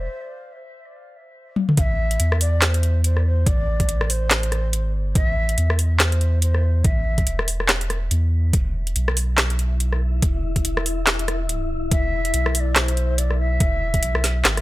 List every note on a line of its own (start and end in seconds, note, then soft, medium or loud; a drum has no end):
0.00 0.51 C5 medium
1.56 high tom medium
1.69 mid tom medium
1.77 2.18 A1 loud
1.77 2.37 E5 loud
1.77 1.82 F5 loud
1.77 kick loud
1.77 closed hi-hat medium
2.11 closed hi-hat medium
2.20 3.45 E2 medium
2.20 closed hi-hat medium
2.32 cross-stick medium
2.41 2.62 D5 loud
2.41 open hi-hat medium
2.62 3.04 C5 loud
2.62 2.67 D5 medium
2.62 snare loud
2.62 clap loud
2.62 closed hi-hat medium
2.74 closed hi-hat medium
2.83 closed hi-hat medium
3.04 3.24 C5 medium
3.04 closed hi-hat medium
3.17 cross-stick medium
3.26 3.48 C5 medium
3.46 3.87 A1 loud
3.46 4.12 D5 loud
3.46 kick loud
3.46 closed hi-hat medium
3.80 kick medium
3.80 closed hi-hat medium
3.89 4.77 A1 medium
3.89 closed hi-hat medium
4.01 cross-stick medium
4.10 4.94 C5 loud
4.10 open hi-hat medium
4.31 snare loud
4.31 clap loud
4.31 closed hi-hat medium
4.43 closed hi-hat medium
4.52 cross-stick medium
4.52 closed hi-hat medium
4.73 5.02 G#1 medium
4.73 closed hi-hat medium
5.02 5.14 G1 medium
5.15 5.56 A1 loud
5.15 5.75 E5 loud
5.15 kick loud
5.15 closed hi-hat medium
5.49 closed hi-hat medium
5.58 6.83 E2 medium
5.58 closed hi-hat medium
5.70 cross-stick medium
5.79 open hi-hat medium
6.00 6.39 C5 medium
6.00 snare loud
6.00 clap loud
6.00 closed hi-hat medium
6.12 closed hi-hat medium
6.21 closed hi-hat medium
6.42 6.86 C5 medium
6.42 closed hi-hat medium
6.55 cross-stick medium
6.84 7.25 A1 loud
6.84 7.48 E5 loud
6.84 kick loud
6.84 closed hi-hat medium
7.18 kick medium
7.18 closed hi-hat medium
7.27 8.10 E1 loud
7.27 closed hi-hat medium
7.39 cross-stick medium
7.48 open hi-hat medium
7.60 cross-stick medium
7.69 snare loud
7.69 clap medium
7.69 closed hi-hat medium
7.81 closed hi-hat soft
7.90 cross-stick medium
7.90 closed hi-hat medium
8.11 8.52 E2 loud
8.11 closed hi-hat medium
8.53 8.94 E1 loud
8.53 14.61 E4 medium
8.53 14.61 E5 medium
8.53 kick loud
8.53 closed hi-hat medium
8.87 closed hi-hat soft
8.96 10.21 B1 loud
8.96 closed hi-hat medium
9.08 cross-stick medium
9.17 open hi-hat loud
9.38 snare loud
9.38 clap medium
9.38 closed hi-hat medium
9.50 closed hi-hat medium
9.59 closed hi-hat medium
9.80 closed hi-hat medium
9.93 cross-stick medium
10.22 10.63 E1 loud
10.22 kick loud
10.22 closed hi-hat medium
10.56 kick medium
10.56 closed hi-hat medium
10.65 11.90 E1 medium
10.65 closed hi-hat medium
10.77 cross-stick medium
10.86 open hi-hat loud
11.07 snare loud
11.07 clap medium
11.07 closed hi-hat medium
11.19 closed hi-hat medium
11.28 cross-stick medium
11.28 closed hi-hat medium
11.49 closed hi-hat medium
11.91 12.32 E1 loud
11.91 12.55 E5 loud
11.91 kick loud
11.91 closed hi-hat medium
12.25 closed hi-hat medium
12.34 13.59 B1 loud
12.34 closed hi-hat medium
12.46 cross-stick medium
12.55 12.61 E5 loud
12.55 open hi-hat loud
12.60 12.78 D5 loud
12.76 13.20 C5 loud
12.76 snare loud
12.76 clap medium
12.76 closed hi-hat medium
12.88 closed hi-hat medium
12.97 closed hi-hat medium
13.18 13.39 D5 loud
13.18 closed hi-hat medium
13.31 cross-stick medium
13.39 14.61 E5 loud
13.60 14.01 E1 loud
13.60 kick loud
13.60 closed hi-hat medium
13.94 kick medium
13.94 closed hi-hat medium
14.03 14.44 B1 loud
14.03 closed hi-hat medium
14.15 cross-stick medium
14.24 snare medium
14.24 open hi-hat medium
14.45 14.61 G#1 loud
14.45 snare loud
14.45 clap loud
14.45 closed hi-hat medium
14.57 cross-stick medium
14.57 closed hi-hat medium